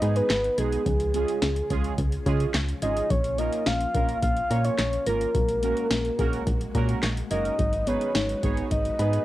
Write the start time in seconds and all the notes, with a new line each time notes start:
Already playing: G#3 D#4 F#4 B4 D#5
0.02 G#2 G#3 B3 D#4 G#4 B5, closed hi-hat
0.16 B4, closed hi-hat
0.30 G#1 D#6, snare, clap, closed hi-hat
0.44 closed hi-hat
0.58 B1 G#3 B3 D#4 G#4 G#6, closed hi-hat
0.72 closed hi-hat
0.86 C#2 C#3 F3 C#4 F4 G#4, kick, closed hi-hat
1.00 closed hi-hat
1.14 G#3 C#4 F4 G#4, closed hi-hat
1.28 closed hi-hat
1.42 C#2 C#4, snare, closed hi-hat
1.56 closed hi-hat
1.70 C#2 G#3 C#4 F4 G#4, kick, closed hi-hat
1.84 closed hi-hat
1.98 C#2, kick, closed hi-hat
2.12 closed hi-hat
2.26 C#3 G#3 C#4 F4 G#4 G#5, kick, closed hi-hat
2.40 closed hi-hat
2.54 C#2 C#6, snare, clap, closed hi-hat
2.69 closed hi-hat
2.82 G#1 G#3 C#4 F4 G#4 D#5 G#6, closed hi-hat
2.97 closed hi-hat
3.10 A#1 F3 A#3 C#5, kick, closed hi-hat
3.24 closed hi-hat
3.38 A#3 C#4 F4 A#4 D#5, closed hi-hat
3.53 closed hi-hat
3.66 A#1 C#4 F5, snare, closed hi-hat
3.81 closed hi-hat
3.94 A#1 A#3 C#4 F4 A#4, kick, closed hi-hat
4.09 closed hi-hat
4.22 A#1 F5, kick, closed hi-hat
4.37 closed hi-hat
4.50 A#2 A#3 C#4 F4 C#5 A#5, closed hi-hat
4.64 C#5, closed hi-hat
4.78 A#1 C#6, snare, clap, closed hi-hat
4.93 closed hi-hat
5.06 G#1 A#3 C#4 F4 A#4 A#6, closed hi-hat
5.21 closed hi-hat
5.35 A#1 F#3 G#3 A#3 F#4, kick, closed hi-hat
5.49 closed hi-hat
5.63 A#3 C#4 F#4 A#4, closed hi-hat
5.77 closed hi-hat
5.91 A#1 C#4, snare, closed hi-hat
6.05 closed hi-hat
6.19 A#1 A#3 C#4 F#4 G#4 A#4, kick, closed hi-hat
6.33 closed hi-hat
6.47 A#1, kick, closed hi-hat
6.61 closed hi-hat
6.75 A#2 A#3 C#4 F#4 A#4 A#5, kick, closed hi-hat
6.89 closed hi-hat
7.03 A#1 C#6, snare, clap, closed hi-hat
7.17 closed hi-hat
7.31 F#1 A#3 C#4 F#4 A#4 D#5 G#6, closed hi-hat
7.45 closed hi-hat
7.59 G#1 F#3 D#4 F#4 B4, kick, closed hi-hat
7.73 closed hi-hat
7.87 B3 D#4 G#4 B4 C#5, closed hi-hat
8.01 closed hi-hat
8.15 G#1 D#4, snare, closed hi-hat
8.29 closed hi-hat
8.43 G#1 B3 D#4 G#4 C#5, kick, closed hi-hat
8.57 closed hi-hat
8.71 G#1 D#5, kick, closed hi-hat
8.85 closed hi-hat
8.99 G#2 B3 D#4 G#4 B4 B5, closed hi-hat
9.13 closed hi-hat